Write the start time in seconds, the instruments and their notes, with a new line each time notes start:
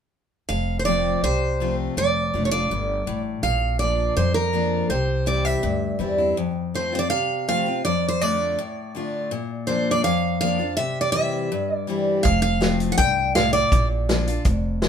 0.49 upright bass F1, steel-string acoustic guitar F2 F5
0.79 steel-string acoustic guitar C5
0.85 steel-string acoustic guitar F3 A3 C4 F4 D5
1.23 upright bass C2, steel-string acoustic guitar C3 C5
1.60 steel-string acoustic guitar F3 A3 C4 F4
1.97 upright bass F1, steel-string acoustic guitar F2 D5
2.34 upright bass F1, steel-string acoustic guitar D3 A3 D4 F4
2.45 steel-string acoustic guitar C#5
2.51 steel-string acoustic guitar D4 F4 D5
2.70 upright bass G1, steel-string acoustic guitar G2
3.06 upright bass A1, steel-string acoustic guitar A2
3.42 upright bass A#1, steel-string acoustic guitar A#2 F5
3.79 steel-string acoustic guitar F3 A#3 D4 F4 D5
4.17 upright bass F2, steel-string acoustic guitar F2 C5
4.34 steel-string acoustic guitar A#4
4.53 steel-string acoustic guitar F3 A#3 D4 F4
4.89 upright bass C2, steel-string acoustic guitar C3 C5
5.26 steel-string acoustic guitar E3 G3 C4 E4 D5
5.45 steel-string acoustic guitar E5
5.63 upright bass D2, steel-string acoustic guitar G2
5.99 upright bass E2, steel-string acoustic guitar E3 G3 C4 E4
6.18 steel-string acoustic guitar C4 E4
6.37 steel-string acoustic guitar F2
6.74 steel-string acoustic guitar F3 A3 C4 F4 C5
6.92 steel-string acoustic guitar C4 F4 C5
6.99 steel-string acoustic guitar D5
7.10 steel-string acoustic guitar C3 F5
7.48 steel-string acoustic guitar F3 A3 C4 F4 F5
7.66 steel-string acoustic guitar C4 F4
7.85 steel-string acoustic guitar F2 D5
8.08 steel-string acoustic guitar C5
8.21 steel-string acoustic guitar D3 A3 D4 F4 D5
8.59 steel-string acoustic guitar A2
8.95 steel-string acoustic guitar D3 A3 D4 F4
9.31 steel-string acoustic guitar A#2
9.67 steel-string acoustic guitar F3 A#3 D4 F4 C5
9.91 steel-string acoustic guitar D5
10.04 steel-string acoustic guitar F2 F5
10.41 steel-string acoustic guitar F3 A#3 D4 F4 F5
10.59 steel-string acoustic guitar D4 F4
10.77 steel-string acoustic guitar C3 E5
11.01 steel-string acoustic guitar D5
11.12 steel-string acoustic guitar E3 G3 C4 E4 E5
11.52 steel-string acoustic guitar G2
11.75 steel-string acoustic guitar D5
11.87 steel-string acoustic guitar E3 G3 C4 E4
12.23 upright bass F1, steel-string acoustic guitar F2 F5, kick, closed hi-hat
12.42 steel-string acoustic guitar F5
12.60 steel-string acoustic guitar F3 A3 C4 F4, snare, closed hi-hat
12.80 closed hi-hat
12.92 steel-string acoustic guitar F#5
12.98 upright bass C2, steel-string acoustic guitar G2 G5, kick, closed hi-hat
13.35 steel-string acoustic guitar A2 F5, snare, closed hi-hat
13.53 steel-string acoustic guitar D5
13.72 upright bass A#1, steel-string acoustic guitar A#2, kick, closed hi-hat
14.09 steel-string acoustic guitar F3 A#3 D4 F4, snare, closed hi-hat
14.27 steel-string acoustic guitar D4 F4, closed hi-hat
14.45 upright bass F1, steel-string acoustic guitar F2, kick, closed hi-hat
14.82 steel-string acoustic guitar F3 A#3 D4 F4, snare, closed hi-hat